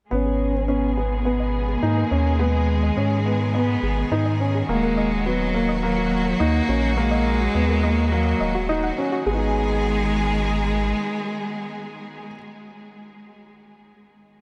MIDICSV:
0, 0, Header, 1, 6, 480
1, 0, Start_track
1, 0, Key_signature, 5, "minor"
1, 0, Tempo, 571429
1, 98, Time_signature, 4, 2, 24, 8
1, 12105, End_track
2, 0, Start_track
2, 0, Title_t, "Synth arpeggio sound"
2, 0, Program_c, 0, 84
2, 215, Note_on_c, 0, 68, 68
2, 293, Note_off_c, 0, 68, 0
2, 455, Note_on_c, 0, 71, 72
2, 533, Note_off_c, 0, 71, 0
2, 573, Note_on_c, 0, 75, 86
2, 621, Note_off_c, 0, 75, 0
2, 817, Note_on_c, 0, 68, 72
2, 894, Note_off_c, 0, 68, 0
2, 1056, Note_on_c, 0, 71, 78
2, 1133, Note_off_c, 0, 71, 0
2, 1175, Note_on_c, 0, 75, 105
2, 1222, Note_off_c, 0, 75, 0
2, 1417, Note_on_c, 0, 68, 73
2, 1493, Note_off_c, 0, 68, 0
2, 1655, Note_on_c, 0, 71, 74
2, 1733, Note_off_c, 0, 71, 0
2, 1775, Note_on_c, 0, 75, 93
2, 1822, Note_off_c, 0, 75, 0
2, 2012, Note_on_c, 0, 68, 82
2, 2091, Note_off_c, 0, 68, 0
2, 2254, Note_on_c, 0, 71, 75
2, 2332, Note_off_c, 0, 71, 0
2, 2375, Note_on_c, 0, 75, 96
2, 2422, Note_off_c, 0, 75, 0
2, 2614, Note_on_c, 0, 68, 71
2, 2692, Note_off_c, 0, 68, 0
2, 2855, Note_on_c, 0, 71, 77
2, 2933, Note_off_c, 0, 71, 0
2, 2976, Note_on_c, 0, 75, 97
2, 3023, Note_off_c, 0, 75, 0
2, 3216, Note_on_c, 0, 68, 73
2, 3293, Note_off_c, 0, 68, 0
2, 3459, Note_on_c, 0, 71, 84
2, 3534, Note_off_c, 0, 71, 0
2, 3575, Note_on_c, 0, 75, 91
2, 3622, Note_off_c, 0, 75, 0
2, 3819, Note_on_c, 0, 68, 72
2, 3894, Note_off_c, 0, 68, 0
2, 4056, Note_on_c, 0, 70, 78
2, 4133, Note_off_c, 0, 70, 0
2, 4178, Note_on_c, 0, 75, 97
2, 4224, Note_off_c, 0, 75, 0
2, 4419, Note_on_c, 0, 66, 83
2, 4495, Note_off_c, 0, 66, 0
2, 4657, Note_on_c, 0, 70, 80
2, 4733, Note_off_c, 0, 70, 0
2, 4777, Note_on_c, 0, 75, 96
2, 4823, Note_off_c, 0, 75, 0
2, 5017, Note_on_c, 0, 66, 76
2, 5094, Note_off_c, 0, 66, 0
2, 5256, Note_on_c, 0, 70, 75
2, 5333, Note_off_c, 0, 70, 0
2, 5374, Note_on_c, 0, 75, 105
2, 5421, Note_off_c, 0, 75, 0
2, 5615, Note_on_c, 0, 66, 70
2, 5693, Note_off_c, 0, 66, 0
2, 5854, Note_on_c, 0, 70, 82
2, 5932, Note_off_c, 0, 70, 0
2, 5974, Note_on_c, 0, 75, 96
2, 6021, Note_off_c, 0, 75, 0
2, 6214, Note_on_c, 0, 66, 78
2, 6292, Note_off_c, 0, 66, 0
2, 6457, Note_on_c, 0, 70, 80
2, 6533, Note_off_c, 0, 70, 0
2, 6577, Note_on_c, 0, 75, 106
2, 6623, Note_off_c, 0, 75, 0
2, 6818, Note_on_c, 0, 66, 81
2, 6894, Note_off_c, 0, 66, 0
2, 7059, Note_on_c, 0, 75, 69
2, 7134, Note_off_c, 0, 75, 0
2, 7180, Note_on_c, 0, 66, 102
2, 7293, Note_off_c, 0, 66, 0
2, 7300, Note_on_c, 0, 75, 85
2, 7375, Note_off_c, 0, 75, 0
2, 7420, Note_on_c, 0, 78, 75
2, 7495, Note_off_c, 0, 78, 0
2, 7663, Note_on_c, 0, 66, 104
2, 7706, Note_off_c, 0, 66, 0
2, 7784, Note_on_c, 0, 68, 89
2, 8004, Note_off_c, 0, 68, 0
2, 12105, End_track
3, 0, Start_track
3, 0, Title_t, "Upright piano"
3, 0, Program_c, 1, 0
3, 93, Note_on_c, 1, 59, 83
3, 425, Note_off_c, 1, 59, 0
3, 573, Note_on_c, 1, 61, 73
3, 739, Note_off_c, 1, 61, 0
3, 815, Note_on_c, 1, 59, 68
3, 981, Note_off_c, 1, 59, 0
3, 1052, Note_on_c, 1, 59, 78
3, 1384, Note_off_c, 1, 59, 0
3, 1533, Note_on_c, 1, 63, 78
3, 1700, Note_off_c, 1, 63, 0
3, 1772, Note_on_c, 1, 61, 66
3, 1939, Note_off_c, 1, 61, 0
3, 2011, Note_on_c, 1, 59, 86
3, 2343, Note_off_c, 1, 59, 0
3, 2493, Note_on_c, 1, 61, 74
3, 2659, Note_off_c, 1, 61, 0
3, 2736, Note_on_c, 1, 59, 69
3, 2902, Note_off_c, 1, 59, 0
3, 2973, Note_on_c, 1, 59, 78
3, 3304, Note_off_c, 1, 59, 0
3, 3458, Note_on_c, 1, 63, 82
3, 3623, Note_off_c, 1, 63, 0
3, 3697, Note_on_c, 1, 61, 68
3, 3862, Note_off_c, 1, 61, 0
3, 3941, Note_on_c, 1, 58, 92
3, 4270, Note_off_c, 1, 58, 0
3, 4419, Note_on_c, 1, 59, 78
3, 4584, Note_off_c, 1, 59, 0
3, 4658, Note_on_c, 1, 58, 72
3, 4823, Note_off_c, 1, 58, 0
3, 4898, Note_on_c, 1, 58, 80
3, 5228, Note_off_c, 1, 58, 0
3, 5377, Note_on_c, 1, 63, 80
3, 5542, Note_off_c, 1, 63, 0
3, 5617, Note_on_c, 1, 61, 75
3, 5782, Note_off_c, 1, 61, 0
3, 5859, Note_on_c, 1, 58, 98
3, 6189, Note_off_c, 1, 58, 0
3, 6340, Note_on_c, 1, 59, 85
3, 6504, Note_off_c, 1, 59, 0
3, 6580, Note_on_c, 1, 58, 79
3, 6744, Note_off_c, 1, 58, 0
3, 6823, Note_on_c, 1, 58, 79
3, 7151, Note_off_c, 1, 58, 0
3, 7300, Note_on_c, 1, 63, 89
3, 7464, Note_off_c, 1, 63, 0
3, 7543, Note_on_c, 1, 61, 77
3, 7706, Note_off_c, 1, 61, 0
3, 7783, Note_on_c, 1, 56, 78
3, 7815, Note_on_c, 1, 59, 77
3, 7849, Note_on_c, 1, 63, 74
3, 7883, Note_on_c, 1, 68, 71
3, 10293, Note_off_c, 1, 56, 0
3, 10325, Note_off_c, 1, 59, 0
3, 10359, Note_off_c, 1, 63, 0
3, 10393, Note_off_c, 1, 68, 0
3, 12105, End_track
4, 0, Start_track
4, 0, Title_t, "Cello"
4, 0, Program_c, 2, 42
4, 100, Note_on_c, 2, 61, 101
4, 580, Note_on_c, 2, 59, 92
4, 593, Note_off_c, 2, 61, 0
4, 1059, Note_off_c, 2, 59, 0
4, 1063, Note_on_c, 2, 59, 91
4, 1548, Note_on_c, 2, 58, 88
4, 1560, Note_off_c, 2, 59, 0
4, 2024, Note_on_c, 2, 56, 89
4, 2037, Note_off_c, 2, 58, 0
4, 2984, Note_on_c, 2, 59, 82
4, 2996, Note_off_c, 2, 56, 0
4, 3461, Note_off_c, 2, 59, 0
4, 3938, Note_on_c, 2, 56, 92
4, 4418, Note_on_c, 2, 54, 94
4, 4431, Note_off_c, 2, 56, 0
4, 4889, Note_off_c, 2, 54, 0
4, 4894, Note_on_c, 2, 54, 98
4, 5379, Note_on_c, 2, 58, 107
4, 5392, Note_off_c, 2, 54, 0
4, 5856, Note_off_c, 2, 58, 0
4, 5862, Note_on_c, 2, 56, 107
4, 6818, Note_on_c, 2, 54, 85
4, 6830, Note_off_c, 2, 56, 0
4, 7298, Note_off_c, 2, 54, 0
4, 7776, Note_on_c, 2, 56, 92
4, 10286, Note_off_c, 2, 56, 0
4, 12105, End_track
5, 0, Start_track
5, 0, Title_t, "String section"
5, 0, Program_c, 3, 48
5, 92, Note_on_c, 3, 56, 70
5, 92, Note_on_c, 3, 68, 81
5, 94, Note_on_c, 3, 47, 63
5, 94, Note_on_c, 3, 51, 74
5, 3902, Note_off_c, 3, 47, 0
5, 3902, Note_off_c, 3, 56, 0
5, 3902, Note_off_c, 3, 68, 0
5, 3943, Note_on_c, 3, 54, 70
5, 3943, Note_on_c, 3, 58, 74
5, 3944, Note_on_c, 3, 66, 92
5, 7743, Note_off_c, 3, 51, 0
5, 7747, Note_off_c, 3, 54, 0
5, 7747, Note_off_c, 3, 58, 0
5, 7747, Note_off_c, 3, 66, 0
5, 7777, Note_on_c, 3, 51, 91
5, 7778, Note_on_c, 3, 59, 77
5, 7780, Note_on_c, 3, 68, 99
5, 7781, Note_on_c, 3, 56, 78
5, 10287, Note_off_c, 3, 51, 0
5, 10288, Note_off_c, 3, 59, 0
5, 10290, Note_off_c, 3, 68, 0
5, 10291, Note_off_c, 3, 56, 0
5, 12105, End_track
6, 0, Start_track
6, 0, Title_t, "Analog synth bass"
6, 0, Program_c, 4, 38
6, 98, Note_on_c, 4, 32, 90
6, 1486, Note_off_c, 4, 32, 0
6, 1537, Note_on_c, 4, 44, 90
6, 1713, Note_off_c, 4, 44, 0
6, 1776, Note_on_c, 4, 39, 98
6, 2445, Note_off_c, 4, 39, 0
6, 2496, Note_on_c, 4, 44, 76
6, 3166, Note_off_c, 4, 44, 0
6, 3215, Note_on_c, 4, 32, 97
6, 3392, Note_off_c, 4, 32, 0
6, 3456, Note_on_c, 4, 44, 78
6, 3885, Note_off_c, 4, 44, 0
6, 3936, Note_on_c, 4, 27, 95
6, 5326, Note_off_c, 4, 27, 0
6, 5379, Note_on_c, 4, 39, 99
6, 5554, Note_off_c, 4, 39, 0
6, 5619, Note_on_c, 4, 34, 105
6, 6287, Note_off_c, 4, 34, 0
6, 6340, Note_on_c, 4, 39, 86
6, 7007, Note_off_c, 4, 39, 0
6, 7058, Note_on_c, 4, 27, 80
6, 7487, Note_off_c, 4, 27, 0
6, 7780, Note_on_c, 4, 32, 99
6, 9185, Note_off_c, 4, 32, 0
6, 12105, End_track
0, 0, End_of_file